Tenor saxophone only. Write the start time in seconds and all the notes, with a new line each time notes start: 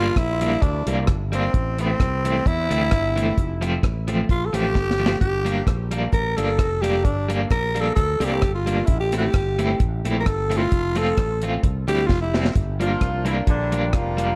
Already playing: F4
0.18 E4
0.62 D4
1.34 C4
1.81 C4
2.47 E4
4.31 F4
4.46 A4
4.54 G4
5.21 G4
6.13 A#4
6.37 A4
6.82 G4
7.04 D4
7.51 A#4
7.80 A4
7.95 A4
8.25 G4
8.55 F4
8.86 E4
9.00 G4
9.17 G4
10.20 A#4
10.27 A4
10.57 F4
10.98 A4
11.88 G4
12.07 F4
12.21 E4